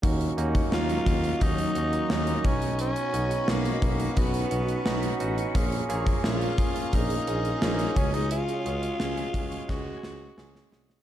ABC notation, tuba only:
X:1
M:4/4
L:1/8
Q:1/4=87
K:Ebm
V:1 name="Tuba" clef=bass
E,, E,, E,, E,, E,, E,, E,, =B,,,- | =B,,, B,,, B,,, B,,, B,,, B,,, B,,, =A,,, | B,,, B,,, B,,, z B,,, B,,, B,,, D,,- | D,, D,, D,, D,, D,, D,, D,, =C,, |]